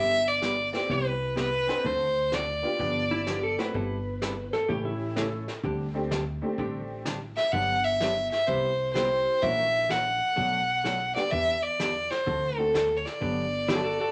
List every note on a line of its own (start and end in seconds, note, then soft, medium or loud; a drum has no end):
0.00 0.71 G1 medium
0.00 0.17 G3 medium
0.00 0.17 B3 medium
0.00 0.17 E4 medium
0.00 0.18 G4 medium
0.00 0.29 E5 loud
0.28 0.74 D5 medium
0.42 0.54 G3 medium
0.42 0.54 B3 medium
0.42 0.54 E4 medium
0.42 0.54 G4 medium
0.42 snare medium
0.42 hi-hat pedal medium
0.73 0.88 B3 medium
0.73 0.88 C4 medium
0.73 0.88 E4 medium
0.73 0.88 G4 medium
0.73 0.93 D5 medium
0.73 snare soft
0.89 1.66 C2 medium
0.89 1.12 C3 medium
0.89 1.12 G3 medium
0.89 1.13 B3 medium
0.89 1.13 E4 medium
0.89 1.13 G4 medium
0.89 1.38 B4 medium
0.89 brush sweep soft
0.89 kick soft
1.36 1.48 C3 medium
1.36 1.49 G3 medium
1.36 1.49 B3 medium
1.36 1.49 E4 medium
1.36 1.49 G4 medium
1.36 snare medium
1.36 hi-hat pedal medium
1.40 1.87 B4 medium
1.67 1.82 C4 medium
1.67 1.83 D4 medium
1.67 1.83 F#4 medium
1.67 1.83 C5 medium
1.67 snare soft
1.85 2.60 D2 medium
1.85 2.07 D3 medium
1.85 2.07 A3 medium
1.85 2.07 C4 medium
1.85 2.07 F#4 medium
1.85 2.08 A4 medium
1.85 2.36 C5 loud
1.85 brush sweep soft
1.85 kick soft
2.32 2.44 D3 medium
2.32 2.44 A3 medium
2.32 2.45 C4 medium
2.32 2.44 F#4 medium
2.32 2.45 A4 medium
2.32 3.59 D5 medium
2.32 snare medium
2.32 hi-hat pedal medium
2.63 2.77 B3 medium
2.63 2.78 D4 medium
2.63 2.78 F4 medium
2.63 2.78 G4 medium
2.79 3.55 G1 medium
2.79 3.02 D3 soft
2.79 3.02 F3 medium
2.79 3.02 B3 medium
2.79 3.02 D4 medium
2.79 3.02 G4 medium
2.79 brush sweep soft
2.79 kick soft
3.11 3.26 E4 medium
3.27 3.39 D3 medium
3.27 3.39 F3 medium
3.27 3.39 B3 medium
3.27 3.39 D4 medium
3.27 3.43 G4 medium
3.27 3.39 G4 medium
3.27 snare medium
3.27 hi-hat pedal medium
3.43 3.58 A4 medium
3.58 3.72 A3 medium
3.58 3.73 C4 medium
3.58 3.73 E4 medium
3.58 3.73 F#4 medium
3.58 4.50 B4 medium
3.58 snare soft
3.74 4.50 G1 medium
3.74 3.97 G3 medium
3.74 3.97 C4 medium
3.74 3.97 E4 medium
3.74 3.98 A4 medium
3.74 brush sweep soft
3.74 kick soft
4.22 4.34 G3 medium
4.22 4.34 C4 medium
4.22 4.34 E4 medium
4.22 4.34 A4 medium
4.22 snare medium
4.22 hi-hat pedal medium
4.53 4.68 A4 medium
4.53 snare soft
4.69 5.45 A1 medium
4.69 4.91 C#3 medium
4.69 4.92 E3 medium
4.69 5.14 A3 medium
4.69 4.92 A3 medium
4.69 5.15 C#4 medium
4.69 4.92 C#4 medium
4.69 5.15 E4 medium
4.69 4.84 G4 medium
4.69 4.92 G4 medium
4.69 5.15 G4 medium
4.69 brush sweep soft
4.69 kick soft
4.85 5.31 E4 medium
5.15 5.28 C#3 medium
5.15 5.28 E3 medium
5.15 5.44 A3 medium
5.15 5.28 A3 medium
5.15 5.44 C#4 medium
5.15 5.29 C#4 medium
5.15 5.45 E4 medium
5.15 5.29 G4 medium
5.15 5.45 A4 medium
5.15 snare medium
5.15 hi-hat pedal medium
5.48 snare soft
5.63 6.39 D2 medium
5.63 5.86 D3 medium
5.63 5.86 G3 medium
5.63 5.87 C4 medium
5.63 5.87 D4 medium
5.63 5.87 G4 medium
5.63 brush sweep soft
5.63 kick soft
5.94 6.09 A3 medium
5.94 6.09 C4 medium
5.94 6.09 D4 medium
5.94 6.10 G4 medium
6.11 6.23 D3 medium
6.11 6.23 G3 medium
6.11 6.23 C4 medium
6.11 6.24 D4 medium
6.11 6.24 G4 medium
6.11 snare medium
6.11 hi-hat pedal medium
6.42 7.02 A3 medium
6.42 7.03 C4 medium
6.42 7.03 D4 medium
6.42 7.03 G4 medium
6.58 7.34 A1 medium
6.58 6.81 D3 soft
6.58 6.81 G3 medium
6.58 6.81 C4 medium
6.58 6.81 D4 medium
6.58 6.81 G4 medium
6.58 brush sweep soft
6.58 kick soft
7.05 7.18 D3 medium
7.05 7.18 G3 medium
7.05 7.18 C4 medium
7.05 7.18 D4 medium
7.05 7.18 G4 medium
7.05 snare medium
7.05 hi-hat pedal medium
7.37 7.54 E5 medium
7.37 snare soft
7.52 8.29 G1 medium
7.52 7.76 D3 medium
7.52 7.76 F#3 medium
7.52 7.76 B3 medium
7.52 7.76 D4 medium
7.52 7.76 G4 medium
7.52 7.86 F#5 loud
7.52 brush sweep soft
7.52 kick soft
7.84 8.31 E5 loud
8.00 8.12 D3 medium
8.00 8.13 F#3 medium
8.00 8.13 B3 medium
8.00 8.13 D4 medium
8.00 8.13 G4 medium
8.00 snare medium
8.00 hi-hat pedal medium
8.31 8.48 E5 medium
8.31 snare soft
8.47 9.24 C2 medium
8.47 8.70 C3 medium
8.47 8.71 G3 medium
8.47 8.71 B3 medium
8.47 8.71 E4 medium
8.47 8.71 G4 medium
8.47 8.93 C5 medium
8.47 brush sweep soft
8.47 kick soft
8.93 9.07 C3 medium
8.93 9.42 G3 medium
8.93 9.07 G3 medium
8.93 9.07 B3 medium
8.93 9.43 C4 medium
8.93 9.07 E4 medium
8.93 9.41 E4 medium
8.93 9.08 G4 medium
8.93 9.43 G4 medium
8.93 9.44 C5 loud
8.93 snare medium
8.93 hi-hat pedal medium
9.41 10.19 A#1 medium
9.41 9.65 E3 medium
9.41 9.70 A#3 medium
9.41 9.65 A#3 medium
9.41 9.71 C#4 medium
9.41 9.66 C#4 medium
9.41 9.71 E4 medium
9.41 9.71 F#4 medium
9.41 9.66 F#4 medium
9.41 9.66 A#4 medium
9.41 9.92 E5 loud
9.41 brush sweep soft
9.41 kick soft
9.89 10.02 E3 medium
9.89 10.02 A#3 medium
9.89 10.02 C#4 medium
9.89 10.02 F#4 medium
9.89 10.02 A#4 medium
9.89 11.15 F#5 loud
9.89 snare medium
9.89 hi-hat pedal medium
10.36 11.14 B1 medium
10.36 10.59 B2 medium
10.36 10.60 F#3 medium
10.36 10.60 A3 medium
10.36 10.60 D4 medium
10.36 10.60 F#4 medium
10.36 brush sweep soft
10.36 kick soft
10.84 10.96 B2 medium
10.84 10.97 F#3 medium
10.84 10.97 A3 medium
10.84 10.97 D4 medium
10.84 10.97 F#4 medium
10.84 snare medium
10.84 hi-hat pedal medium
11.15 11.30 G3 medium
11.15 11.31 B3 medium
11.15 11.31 D4 medium
11.15 11.31 G4 medium
11.15 11.32 D5 medium
11.15 snare soft
11.31 12.08 E2 medium
11.31 11.54 E3 medium
11.31 11.55 B3 medium
11.31 11.55 D4 medium
11.31 11.55 G4 medium
11.31 11.64 E5 loud
11.31 brush sweep soft
11.31 kick soft
11.62 12.12 D5 medium
11.79 11.92 E3 medium
11.79 11.92 B3 medium
11.79 11.92 D4 medium
11.79 11.92 G4 medium
11.79 snare medium
11.79 hi-hat pedal medium
12.11 12.59 C5 medium
12.11 snare soft
12.26 13.03 D2 medium
12.26 12.49 D3 medium
12.26 12.49 A3 medium
12.26 12.49 C4 medium
12.26 12.50 F#4 medium
12.26 12.50 A4 medium
12.26 brush sweep medium
12.26 kick soft
12.57 12.72 A3 medium
12.57 12.73 C4 medium
12.57 12.73 D4 medium
12.57 12.73 F#4 medium
12.57 12.98 A4 medium
12.74 12.86 D3 medium
12.74 12.86 A3 medium
12.74 12.86 C4 medium
12.74 12.87 F#4 medium
12.74 12.87 A4 medium
12.74 snare medium
12.74 hi-hat pedal medium
12.97 13.06 C#5 medium
13.05 14.12 D5 medium
13.05 snare soft
13.21 13.97 G1 medium
13.21 13.44 D3 medium
13.21 13.44 F#3 medium
13.21 13.44 B3 medium
13.21 13.44 D4 medium
13.21 13.44 G4 medium
13.21 brush sweep soft
13.21 kick soft
13.68 13.81 D3 medium
13.68 13.81 F#3 medium
13.68 13.81 B3 medium
13.68 13.81 D4 medium
13.68 13.83 F#4 medium
13.68 13.81 G4 medium
13.68 13.83 A4 medium
13.68 snare medium
13.68 hi-hat pedal medium
13.84 13.99 F#4 medium
13.84 14.00 A4 medium
14.00 14.12 F#4 medium
14.00 14.12 A4 medium